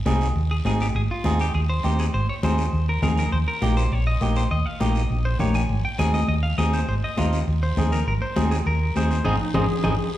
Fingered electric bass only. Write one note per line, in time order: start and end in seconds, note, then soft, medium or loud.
0.06 0.30 C2 medium
0.35 0.59 D#2 medium
0.65 0.89 G#1 medium
0.95 1.07 G#1 medium
1.25 1.48 D#2 medium
1.54 1.78 D#2 loud
1.84 2.08 D#2 medium
2.14 2.26 G#1 medium
2.43 2.67 D#2 medium
2.73 2.97 D#2 loud
3.03 3.26 D#2 medium
3.32 3.44 D#2 medium
3.62 3.86 A#1 medium
3.92 4.15 A#1 loud
4.21 4.45 A#1 medium
4.51 4.63 D#2 medium
4.81 5.04 A#1 medium
5.10 5.34 A#1 loud
5.40 5.64 A#1 medium
5.69 5.81 G#1 medium
5.99 6.23 D#2 medium
6.28 6.52 D#2 medium
6.58 6.82 D#2 medium
6.88 7.00 G#1 medium
7.18 7.42 D#2 medium
7.48 7.71 D#2 loud
7.77 8.01 D#2 medium
8.07 8.19 G#1 medium
8.37 8.60 D#2 medium
8.66 8.90 D#2 loud
8.95 9.19 D#2 medium
9.25 9.36 G#1 medium
9.55 9.66 G#1 loud
9.84 9.95 G#1 medium